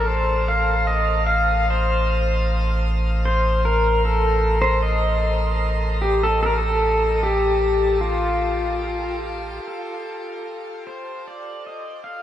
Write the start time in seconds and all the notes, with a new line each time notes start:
Already playing: A1
0.08 C5
0.48 F5
0.87 D#5
1.27 F5
1.70 C5
3.25 C5
3.65 A#4
4.05 A4
4.62 C5
4.82 D#5
6.02 G4
6.23 A4
6.43 A4 A#4
6.58 A4
7.23 G4
8.01 F4
9.68 A4
10.87 C5
11.27 D5
11.67 D#5
12.04 F5